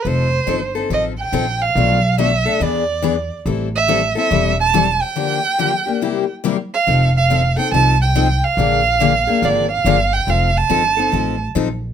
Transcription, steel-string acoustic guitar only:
X:1
M:4/4
L:1/8
Q:"Swing" 1/4=141
K:Bb
V:1 name="Steel-string acoustic guitar"
[F,CEA] z [F,CEA] [CEA] [F,CEA] z [F,CEA] z | [=B,,F,A,DA] z [B,,F,A,DA] [A,DA] [=E,=B,D^G] z [E,B,DG] z | [=E,G,C=EA] z [E,G,CEA] [CEA] [E,G,CEA] z [E,G,CEA] z | [D,F,B,DG] z [D,F,B,DG] [B,DG] [C,G,B,=EG] z [C,G,B,EG] z |
[F,CEA] z [F,CEA] [CEA] [F,CEA] z [F,CEA] z | [D,F,B,D_A] z [D,F,B,DA] [B,DA] [D,F,B,DA] z [D,F,B,DA] z | [F,CEA] z [F,CEA] [CEA] [F,CEA] z [F,CEA] z |]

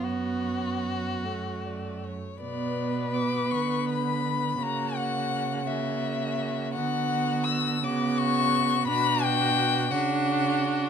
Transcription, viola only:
X:1
M:6/8
L:1/8
Q:3/8=56
K:F#m
V:1 name="Viola"
B,3 A,2 z | [K:Bm] B,6 | ^A,3 A,3 | B,3 B,3 |
D3 D3 |]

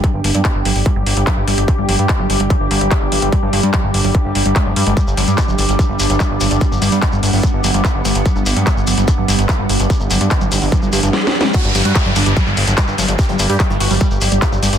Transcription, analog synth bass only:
X:1
M:4/4
L:1/16
Q:1/4=146
K:G
V:1 name="Analog synth bass" clef=bass
z G,,, G,,, G,, z G,,, G,,, G,,, z G,,, G,,, G,,, z G,,, G,,, G,,, | z G,,, G,,, G,, z G,,, G,,, G,,, z G,,, G,,, G,,, z G,,, G,,, G,,, | z G,,, G,,, G,, z G,,, G,,, G,,, z G,,, G,,, G,,, z G,,, G,, G,,, | z G,,, G,,, G,, z G,,, G,,, G,,, z G,,, G,,, G,,, z G,,, G,,, G,,, |
z G,,, G,,, G,, z G,,, G,,, G,,, z G,,, G,,, G,,, z G,,, G,,, G,,, | z G,,, G,,, G,, z G,,, G,,, G,,, z G,,, G,,, G,,, z G,,, G,,, G,,, | z G,,, G,,, G,, z G,,, G,,, G,,, z G,,, G,,, G,,, z4 | z G,,, G,,, G,, z G,,, G,,, G,,, z G,,, G,,, G,,, z G,,, G,,, G,,, |
z G,,, G,,, G,, z G,,, G,,, G,,, z G,,, G,,, G,,, z G,,, G,,, G,,, |]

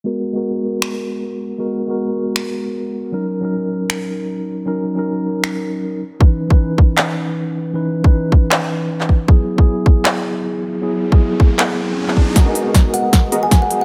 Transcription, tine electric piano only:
X:1
M:4/4
L:1/16
Q:"Swing 16ths" 1/4=156
K:G#m
V:1 name="Tine electric piano"
[G,B,FA]3 [G,B,FA]12- [G,B,FA] | [G,B,FA]3 [G,B,FA]12- [G,B,FA] | [F,CDA]3 [F,CDA]12- [F,CDA] | [F,CDA]3 [F,CDA]8- [F,CDA]3 z2 |
[E,CDB]3 [E,CDB]12- [E,CDB] | [E,CDB]3 [E,CDB]12- [E,CDB] | [F,B,EG]3 [F,B,EG]12- [F,B,EG] | [F,B,EG]3 [F,B,EG]8- [F,B,EG]2 [F,B,EG]3 |
[G,B,FA]3 [G,B,FA]12- [G,B,FA] |]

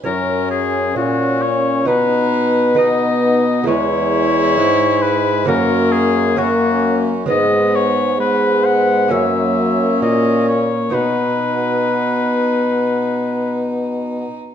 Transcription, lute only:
X:1
M:4/4
L:1/8
Q:1/4=66
K:B
V:1 name="Lute"
[Cc]4 [DB]2 [DB]2 | [G,EB]4 [A,CF]2 [A,CF]2 | [G,B,B]4 [A,CF]4 | [B,DF]8 |]
V:2 name="Lute" clef=bass
F,,2 A,,2 B,,4 | E,,2 G,,2 F,,4 | G,,4 F,,2 A,,2 | B,,6- B,, z |]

